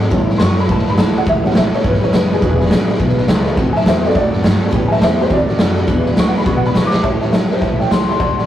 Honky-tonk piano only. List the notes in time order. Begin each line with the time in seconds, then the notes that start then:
0.11 G3 B3 C#4
0.38 C6
0.43 C#6
0.60 B5
0.71 A5
0.90 B5
0.99 A5
1.18 F#5
1.29 E5
1.44 G3 B3 C#4 F#5
1.58 E5
1.75 C#5
1.86 B4
2.04 C#5
2.15 B4
2.33 G#4
2.41 F#3 G#3 D4
3.56 E3 F#3 C4
3.73 E5 G#5
3.77 A5
3.88 C5 E5
4.06 A4 D5
4.12 C#5
4.16 D5
4.72 C#3 B3
4.88 E5 G#5
4.93 A5
5.03 C5 E5
5.21 G4 C5
5.28 E3 F#3 C4 C#5
5.33 D5
5.87 F#3 G#3 D4
6.19 C#6
6.28 F#5
6.38 B5
6.44 F#3 G#3 D4 C#6
6.57 F#5
6.66 B5
6.76 C#6
6.86 D6
7.03 C#5 E5 A5
7.21 C#5 E5 A5
7.32 C#5 E5 A5
7.50 C#5 E5 A5
7.60 C#5 E5 A5
7.79 C#5 E5 A5
7.90 C#5 E5 A5
8.08 C#5 E5 A5
8.19 D5 F#5 A5
8.37 D5 F#5 A5